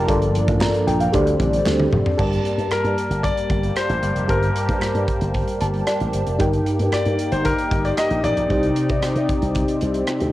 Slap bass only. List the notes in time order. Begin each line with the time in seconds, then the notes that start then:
0.08 G1
0.48 A1
0.87 A#1
1.14 D2
1.40 A1
1.66 D2
1.92 F1
2.19 G1
2.58 G2
2.71 muted slap bass stroke
2.84 G2
3.10 G1
3.50 G1
3.89 A1
4.02 G1
4.15 F1
4.29 G1
4.69 G2
4.82 muted slap bass stroke
4.95 G2
5.21 G1
5.61 G1
6.01 A1
6.14 G1
6.27 F1
6.40 G1
6.80 G2
6.93 muted slap bass stroke
7.06 G2
7.32 G1
7.71 G1
8.11 A#1
8.24 A1
8.37 A#1
8.50 C2
8.89 C3
9.03 muted slap bass stroke
9.16 C3
9.42 C2
9.82 C2
10.21 D2